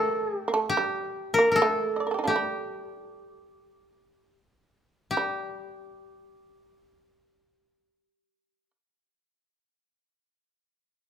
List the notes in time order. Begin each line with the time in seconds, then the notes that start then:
Already playing: A3 G4 A4
0.37 G4
0.48 A#3
0.54 A3
0.69 G4
0.77 G3
1.34 A#4
1.39 A#3
1.52 A#4
1.56 A4
1.62 A3
1.96 D5 D#5
2.07 A#4
2.11 G4 A4
2.19 D#4
2.24 A#3 D4 G4
2.30 A3
2.36 G3
5.11 G4
5.17 G3